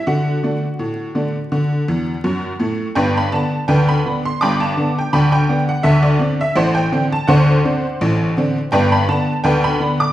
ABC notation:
X:1
M:2/4
L:1/16
Q:"Swing 16ths" 1/4=83
K:G
V:1 name="Honky-tonk piano"
[Ff]8- | [Ff]6 z2 | [Bdg] b a2 [Bdg] b2 c' | [gbd'] a2 g [dgb] g2 f |
e d2 e [cdf] g2 a | [cdf]8 | [Bdg] b a2 [Bdg] b2 d' |]
V:2 name="Honky-tonk piano" clef=bass
D,2 [D,A,D]2 A,,2 [D,A,D]2 | D,2 [E,,E,]2 [F,,F,]2 [A,,A,]2 | [G,,,G,,]2 [D,B,D]2 [D,,D,]2 [D,B,D]2 | [G,,,G,,]2 [D,B,D]2 [D,,D,]2 [D,B,D]2 |
[D,,D,]2 [D,CD]2 [A,,,A,,]2 [D,CD]2 | [D,,D,]2 [D,CD]2 [A,,,A,,]2 [D,CD]2 | [G,,,G,,]2 [D,B,D]2 [D,,D,]2 [D,B,D]2 |]